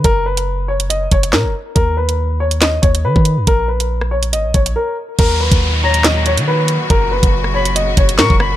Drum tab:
CC |----------------|----------------|----------------|x---------------|
HH |x--x---xx-xx----|x--x---xx-xx--x-|x--x---xx-xx----|x--x---xx-xx--x-|
CP |------------x---|--------x-------|----------------|--------x-------|
SD |------------o---|--------o-------|-----r----------|--------o-------|
BD |o---------o-----|o---------o--o--|o---------o-----|o--o------------|

CC |----------------|
HH |x--x---xx-xx----|
CP |------------x---|
SD |-----r------o-r-|
BD |o--o------o--o--|